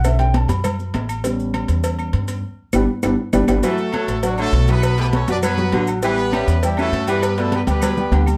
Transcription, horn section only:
\new Staff \with { instrumentName = "Horn section" } { \time 4/4 \key d \major \tempo 4 = 201 r1 | r1 | r1 | <a fis' a'>2 <fis d' fis'>8 <a fis' a'>4 <b fis' b'>8~ |
<b fis' b'>8 <b g' b'>8 <cis' a' cis''>8 <d' b' d''>8 <b fis' b'>4. r8 | <b g' b'>2 <g e' g'>8 <a fis' a'>4 <b g' b'>8~ | <b g' b'>8 <a fis' a'>8 <b g' b'>8 <b g' b'>2 r8 | }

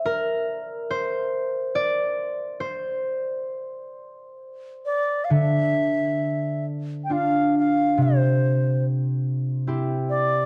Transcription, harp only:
\new Staff \with { instrumentName = "Harp" } { \time 3/4 \key d \minor \tempo 4 = 70 bes'4 c''4 d''4 | c''2 r4 | d2 <d' f'>4 | c2 <c' e' g'>4 | }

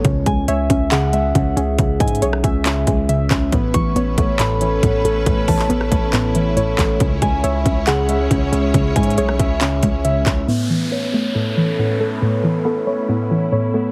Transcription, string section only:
\new Staff \with { instrumentName = "String section" } { \time 4/4 \key a \lydian \tempo 4 = 138 << { r1 | r1 | <a cis' b'>1~ | <a cis' b'>1 |
<gis cis' cis''>1~ | <gis cis' cis''>1 | <a cis' b'>1~ | <a cis' b'>1 | } \\ { r1 | r1 | e'1~ | e'1~ |
e'1~ | e'1 | e'1~ | e'1 | } >> }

